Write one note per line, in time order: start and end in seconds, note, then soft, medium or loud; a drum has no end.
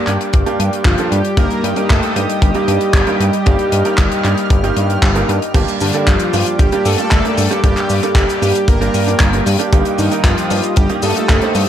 0.00 5.51 G4 medium
0.00 1.34 D5 medium
0.00 5.51 G5 medium
0.00 1.34 D6 medium
0.07 0.18 G2 medium
0.07 0.43 G2 medium
0.07 0.43 G3 medium
0.07 0.43 A#3 medium
0.07 0.43 D4 medium
0.07 0.43 G4 medium
0.07 clap soft
0.07 closed hi-hat medium
0.21 closed hi-hat medium
0.33 0.44 G1 medium
0.33 kick loud
0.33 closed hi-hat medium
0.46 0.95 G2 loud
0.46 0.95 G3 medium
0.46 0.95 A#3 medium
0.46 0.95 D4 medium
0.46 0.95 G4 loud
0.46 closed hi-hat medium
0.59 0.70 G2 medium
0.59 closed hi-hat medium
0.73 closed hi-hat medium
0.85 0.96 G1 loud
0.85 1.10 F3 medium
0.85 1.12 F4 loud
0.85 kick loud
0.85 clap loud
0.85 closed hi-hat medium
0.98 1.17 G2 medium
0.98 1.17 G3 medium
0.98 1.17 A#3 medium
0.98 1.17 D4 medium
0.98 1.17 A4 loud
0.98 closed hi-hat medium
1.11 1.22 G2 loud
1.11 1.36 G3 medium
1.11 1.38 G4 loud
1.11 closed hi-hat medium
1.25 closed hi-hat medium
1.37 1.48 G1 loud
1.37 1.74 G2 loud
1.37 1.74 G3 loud
1.37 1.74 A#3 medium
1.37 1.62 A#3 medium
1.37 1.74 D#4 medium
1.37 1.74 G4 loud
1.37 1.64 A#4 loud
1.37 5.51 D#5 medium
1.37 3.44 D#6 medium
1.37 kick loud
1.37 closed hi-hat medium
1.51 closed hi-hat medium
1.63 1.74 G2 medium
1.63 1.88 G3 medium
1.63 1.88 G4 loud
1.63 closed hi-hat loud
1.76 2.13 G2 loud
1.76 2.13 G3 medium
1.76 2.13 A#3 medium
1.76 2.13 D#4 medium
1.76 2.13 A#4 loud
1.76 closed hi-hat medium
1.90 2.01 G1 loud
1.90 2.14 A3 medium
1.90 2.17 A4 loud
1.90 kick loud
1.90 clap loud
1.90 closed hi-hat medium
2.03 closed hi-hat medium
2.16 2.26 G2 medium
2.16 2.52 G2 medium
2.16 2.52 G3 medium
2.16 4.99 G3 medium
2.16 2.52 A#3 medium
2.16 2.52 D#4 medium
2.16 4.99 G4 loud
2.16 2.52 G4 loud
2.16 closed hi-hat loud
2.30 closed hi-hat medium
2.42 2.53 G1 medium
2.42 kick loud
2.42 closed hi-hat medium
2.54 3.04 G2 loud
2.54 3.04 G3 medium
2.54 3.04 A#3 medium
2.54 3.04 D#4 medium
2.54 3.04 G4 loud
2.54 closed hi-hat medium
2.68 2.78 G2 medium
2.68 closed hi-hat medium
2.81 closed hi-hat medium
2.94 3.04 G1 loud
2.94 kick loud
2.94 clap loud
2.94 closed hi-hat medium
3.07 3.26 G2 loud
3.07 3.26 G3 medium
3.07 3.26 A#3 medium
3.07 3.26 D#4 medium
3.07 3.26 A#4 loud
3.07 closed hi-hat medium
3.20 3.31 G2 medium
3.20 closed hi-hat loud
3.33 closed hi-hat soft
3.46 3.57 G1 loud
3.46 3.82 G2 loud
3.46 3.82 G3 medium
3.46 3.82 A#3 medium
3.46 3.82 D#4 medium
3.46 3.82 G4 loud
3.46 5.53 F6 medium
3.46 kick loud
3.46 closed hi-hat medium
3.59 closed hi-hat soft
3.72 3.83 G2 medium
3.72 closed hi-hat loud
3.85 4.21 G2 medium
3.85 4.21 G3 medium
3.85 4.21 A#3 medium
3.85 4.21 D#4 medium
3.85 4.21 A#4 loud
3.85 closed hi-hat medium
3.98 4.09 G1 loud
3.98 kick loud
3.98 clap loud
3.98 closed hi-hat medium
4.12 closed hi-hat medium
4.24 4.35 G2 medium
4.24 4.61 G2 medium
4.24 4.61 G3 medium
4.24 4.61 A#3 medium
4.24 4.61 D#4 medium
4.24 4.61 G4 loud
4.24 clap soft
4.24 closed hi-hat medium
4.38 closed hi-hat medium
4.50 4.72 G1 medium
4.50 kick loud
4.50 closed hi-hat medium
4.64 5.13 G2 loud
4.64 5.13 G3 medium
4.64 5.13 A#3 medium
4.64 5.13 D#4 medium
4.64 5.13 G4 loud
4.64 closed hi-hat medium
4.77 4.98 G2 medium
4.77 closed hi-hat medium
4.90 closed hi-hat soft
5.02 5.24 G1 medium
5.02 kick loud
5.02 clap loud
5.02 closed hi-hat medium
5.15 5.35 G2 loud
5.15 5.35 G3 medium
5.15 5.35 A#3 medium
5.15 5.35 D#4 medium
5.15 5.35 A#4 loud
5.15 closed hi-hat medium
5.29 5.39 G2 loud
5.29 closed hi-hat medium
5.42 closed hi-hat medium
5.54 5.65 G1 loud
5.54 5.91 G2 loud
5.54 5.91 G3 medium
5.54 5.91 A#3 loud
5.54 5.91 D4 medium
5.54 11.69 G4 medium
5.54 5.91 G4 loud
5.54 9.68 D5 medium
5.54 11.69 G5 medium
5.54 9.68 D6 medium
5.54 kick loud
5.54 closed hi-hat medium
5.54 crash loud
5.54 cabasa medium
5.68 closed hi-hat medium
5.68 cabasa soft
5.80 5.92 G2 medium
5.80 6.06 D3 medium
5.80 6.08 D4 medium
5.80 open hi-hat loud
5.80 cabasa medium
5.93 6.30 G2 medium
5.93 6.30 G3 medium
5.93 6.30 A#3 medium
5.93 6.30 D4 medium
5.93 6.30 A4 loud
5.93 closed hi-hat medium
5.93 cabasa soft
6.07 6.18 G1 loud
6.07 6.56 F3 medium
6.07 6.61 F4 medium
6.07 kick loud
6.07 clap loud
6.07 closed hi-hat medium
6.07 cabasa medium
6.19 closed hi-hat medium
6.19 cabasa soft
6.33 6.44 G2 medium
6.33 6.69 G2 medium
6.33 6.69 G3 medium
6.33 6.69 A#3 medium
6.33 6.69 D4 medium
6.33 6.69 G4 loud
6.33 open hi-hat loud
6.33 cabasa medium
6.46 closed hi-hat medium
6.46 cabasa soft
6.59 6.70 G1 medium
6.59 6.84 G3 medium
6.59 6.86 G4 loud
6.59 kick loud
6.59 closed hi-hat medium
6.59 cabasa medium
6.72 6.96 G2 loud
6.72 6.96 G3 medium
6.72 6.96 A#3 medium
6.72 6.96 D4 medium
6.72 6.96 G4 loud
6.72 closed hi-hat medium
6.85 6.96 G2 medium
6.85 7.60 A3 medium
6.85 7.60 A4 loud
6.85 open hi-hat loud
6.85 cabasa medium
6.98 7.21 G2 medium
6.98 7.21 G3 medium
6.98 7.21 A#3 medium
6.98 7.21 D4 medium
6.98 7.21 F4 medium
6.98 closed hi-hat medium
6.98 cabasa soft
7.11 7.22 G1 loud
7.11 kick loud
7.11 clap loud
7.11 closed hi-hat medium
7.11 cabasa medium
7.25 7.48 G2 medium
7.25 7.48 G3 medium
7.25 7.48 A#3 medium
7.25 7.48 D4 medium
7.25 7.48 A#4 medium
7.25 closed hi-hat medium
7.37 7.48 G2 medium
7.37 open hi-hat loud
7.37 cabasa medium
7.51 7.61 G2 loud
7.51 7.61 G3 medium
7.51 7.61 A#3 medium
7.51 7.61 D4 medium
7.51 7.61 G4 loud
7.51 closed hi-hat medium
7.51 cabasa soft
7.64 7.74 G1 loud
7.64 8.00 G2 loud
7.64 8.00 G3 medium
7.64 8.13 G3 medium
7.64 8.00 A#3 medium
7.64 8.00 D4 loud
7.64 8.00 G4 loud
7.64 8.12 G4 loud
7.64 kick loud
7.64 closed hi-hat medium
7.64 cabasa medium
7.77 clap soft
7.77 closed hi-hat medium
7.77 cabasa soft
7.89 8.00 G2 medium
7.89 open hi-hat loud
7.89 cabasa medium
8.03 8.39 G2 loud
8.03 8.39 G3 medium
8.03 8.39 A#3 medium
8.03 8.39 D4 medium
8.03 8.39 A4 loud
8.03 closed hi-hat medium
8.03 cabasa soft
8.15 8.26 G1 medium
8.15 8.65 G3 medium
8.15 8.70 G4 loud
8.15 kick loud
8.15 clap loud
8.15 closed hi-hat medium
8.15 cabasa medium
8.29 closed hi-hat medium
8.29 cabasa medium
8.42 8.78 G2 medium
8.42 8.53 G2 medium
8.42 8.78 G3 medium
8.42 8.78 A#3 medium
8.42 8.78 D4 medium
8.42 8.78 G4 loud
8.42 open hi-hat loud
8.42 cabasa medium
8.55 closed hi-hat medium
8.55 cabasa medium
8.68 8.89 G1 loud
8.68 9.43 A#3 medium
8.68 9.42 A#4 loud
8.68 kick loud
8.68 closed hi-hat medium
8.68 cabasa medium
8.81 9.05 G2 loud
8.81 9.05 G3 medium
8.81 9.05 A#3 medium
8.81 9.05 D4 medium
8.81 9.05 G4 loud
8.81 closed hi-hat medium
8.94 9.15 G2 medium
8.94 open hi-hat loud
8.94 cabasa medium
9.07 9.30 G2 medium
9.07 9.30 G3 medium
9.07 9.30 A#3 medium
9.07 9.30 D4 medium
9.07 9.30 F4 medium
9.07 closed hi-hat medium
9.07 cabasa soft
9.20 9.41 G1 medium
9.20 kick loud
9.20 clap loud
9.20 closed hi-hat medium
9.20 cabasa soft
9.33 9.56 G2 medium
9.33 9.56 G3 medium
9.33 9.56 A#3 medium
9.33 9.56 D4 medium
9.33 9.56 A#4 medium
9.33 closed hi-hat medium
9.46 9.57 G2 loud
9.46 open hi-hat loud
9.46 cabasa medium
9.59 9.69 G2 loud
9.59 9.69 G3 medium
9.59 9.69 A#3 medium
9.59 9.69 D4 medium
9.59 9.69 G4 loud
9.59 closed hi-hat medium
9.59 cabasa soft
9.72 9.83 G1 loud
9.72 10.08 G2 loud
9.72 10.08 G3 loud
9.72 10.08 A#3 loud
9.72 10.08 D#4 medium
9.72 10.08 G4 loud
9.72 11.69 D#5 medium
9.72 11.69 D#6 medium
9.72 kick loud
9.72 closed hi-hat medium
9.72 cabasa medium
9.85 closed hi-hat medium
9.85 cabasa soft
9.98 10.09 G2 medium
9.98 10.23 D#3 medium
9.98 10.25 D#4 medium
9.98 open hi-hat medium
9.98 cabasa medium
10.11 10.48 G2 loud
10.11 10.48 G3 medium
10.11 10.47 A#3 medium
10.11 10.47 D#4 medium
10.11 10.47 A#4 loud
10.11 closed hi-hat soft
10.11 cabasa soft
10.24 10.35 G1 loud
10.24 10.73 F3 medium
10.24 10.78 F4 loud
10.24 kick loud
10.24 clap loud
10.24 closed hi-hat medium
10.24 cabasa medium
10.38 closed hi-hat medium
10.38 cabasa soft
10.50 10.61 G2 medium
10.50 10.87 G2 medium
10.50 10.87 G3 medium
10.50 10.87 A#3 medium
10.50 10.87 D#4 medium
10.50 10.87 G4 loud
10.50 open hi-hat loud
10.50 cabasa medium
10.63 closed hi-hat medium
10.63 cabasa medium
10.76 10.87 G1 medium
10.76 10.89 G3 medium
10.76 10.88 G4 medium
10.76 kick loud
10.76 closed hi-hat medium
10.76 cabasa medium
10.89 11.13 G2 loud
10.89 11.13 G3 medium
10.89 11.13 A#3 medium
10.89 11.13 D#4 medium
10.89 11.13 G4 loud
10.89 closed hi-hat medium
11.02 11.13 G2 medium
11.02 11.69 A3 medium
11.02 11.69 A4 loud
11.02 open hi-hat loud
11.02 cabasa medium
11.16 11.39 G2 medium
11.16 11.39 G3 medium
11.16 11.39 A#3 medium
11.16 11.39 D#4 medium
11.16 11.39 F4 medium
11.16 closed hi-hat medium
11.16 cabasa soft
11.29 11.40 G1 medium
11.29 kick loud
11.29 clap loud
11.29 closed hi-hat medium
11.29 cabasa medium
11.41 11.65 G2 medium
11.41 11.65 G3 medium
11.41 11.65 A#3 medium
11.41 11.65 D#4 medium
11.41 11.65 C5 medium
11.41 closed hi-hat medium
11.55 11.66 G2 medium
11.55 open hi-hat loud
11.55 cabasa medium